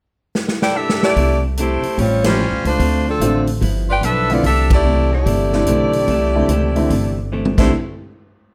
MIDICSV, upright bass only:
0, 0, Header, 1, 3, 480
1, 0, Start_track
1, 0, Key_signature, 0, "major"
1, 0, Tempo, 410116
1, 1361, Time_signature, 4, 2, 24, 8
1, 10001, End_track
2, 0, Start_track
2, 0, Title_t, "Upright bass"
2, 0, Program_c, 0, 32
2, 1359, Note_on_c, 0, 36, 78
2, 2100, Note_off_c, 0, 36, 0
2, 2316, Note_on_c, 0, 33, 80
2, 2911, Note_off_c, 0, 33, 0
2, 2943, Note_on_c, 0, 36, 59
2, 3092, Note_off_c, 0, 36, 0
2, 3099, Note_on_c, 0, 37, 69
2, 3256, Note_off_c, 0, 37, 0
2, 3270, Note_on_c, 0, 38, 82
2, 3718, Note_off_c, 0, 38, 0
2, 3740, Note_on_c, 0, 33, 72
2, 4193, Note_off_c, 0, 33, 0
2, 4229, Note_on_c, 0, 31, 83
2, 4678, Note_off_c, 0, 31, 0
2, 4696, Note_on_c, 0, 35, 71
2, 5152, Note_off_c, 0, 35, 0
2, 5191, Note_on_c, 0, 36, 84
2, 6108, Note_off_c, 0, 36, 0
2, 6153, Note_on_c, 0, 31, 82
2, 6602, Note_off_c, 0, 31, 0
2, 6624, Note_on_c, 0, 35, 74
2, 7078, Note_off_c, 0, 35, 0
2, 7110, Note_on_c, 0, 36, 84
2, 7561, Note_off_c, 0, 36, 0
2, 7586, Note_on_c, 0, 37, 66
2, 8040, Note_off_c, 0, 37, 0
2, 8075, Note_on_c, 0, 31, 76
2, 8822, Note_off_c, 0, 31, 0
2, 8865, Note_on_c, 0, 36, 89
2, 9028, Note_off_c, 0, 36, 0
2, 10001, End_track
3, 0, Start_track
3, 0, Title_t, "Muted upright bass strokes"
3, 2136, Note_on_c, 9, 29, 36
3, 2253, Note_off_c, 9, 29, 0
3, 10001, End_track
0, 0, End_of_file